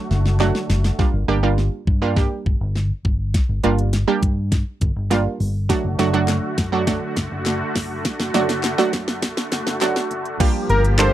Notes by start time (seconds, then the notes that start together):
Already playing: D3 F#3 A3 D4 F#4 A4
0.11 F#1, snare
0.25 snare
0.40 F#3 A3 D4 F#4, snare, clap
0.55 snare
0.70 F#1, snare
0.84 snare
0.99 G3 A#3 D4 F4, kick, snare
1.14 G1
1.28 G1 G3 A#3 D4 G4
1.43 G3 A#3 D4 F4
1.58 snare
1.87 G2, kick
2.02 G3 A#3 D4 F4
2.16 G3 A#3 D4 G4, kick, snare
2.46 G1, kick
2.61 G1
2.75 snare
3.05 G1, kick
3.34 kick, snare, closed hi-hat
3.49 G1
3.64 G1 G3 A#3 D4 F4, closed hi-hat
3.79 closed hi-hat
3.93 snare, closed hi-hat
4.08 G3 A#3 D4 G4
4.23 G2, kick, closed hi-hat
4.52 kick, snare, closed hi-hat
4.81 G1, kick, closed hi-hat
4.96 G1
5.10 G3 A#3 D4 F4, snare, closed hi-hat
5.40 G1, open hi-hat
5.69 D3 F#3 A3 D4 F#4, kick, snare, closed hi-hat
5.84 F#1
5.99 F#1 F#3 A3 D4 F#4, snare, closed hi-hat
6.14 F#3 A3 D4 F#4, closed hi-hat
6.28 snare, clap, closed hi-hat
6.58 F#2, kick, snare, closed hi-hat
6.72 F#3 A3 D4 F#4
6.87 F#3 A3 D4 F#4, kick, snare, closed hi-hat
7.16 F#1, kick, snare, closed hi-hat
7.31 F#1
7.46 snare, clap, closed hi-hat
7.75 F#1, kick, snare, open hi-hat
8.05 kick, snare, closed hi-hat
8.19 F#1, snare
8.34 F#1 F#3 A3 D4 F#4, snare, closed hi-hat
8.49 snare, closed hi-hat
8.63 snare, clap, closed hi-hat
8.78 F#3 A3 D4 F#4, snare
8.93 F#2, kick, snare, closed hi-hat
9.08 snare
9.22 kick, snare, closed hi-hat
9.37 snare
9.52 F#1, snare, closed hi-hat
9.67 F#1, snare
9.81 F#3 A3 D4 F#4, snare, clap, closed hi-hat
9.96 snare
10.11 F#1, closed hi-hat
10.25 closed hi-hat
10.40 F3 G3 A#3 D4 F4 G4, kick, closed hi-hat, crash
10.69 G1 A#4, closed hi-hat
10.84 closed hi-hat
10.98 G3 A#3 D4 F4 A4 C5, snare, clap, closed hi-hat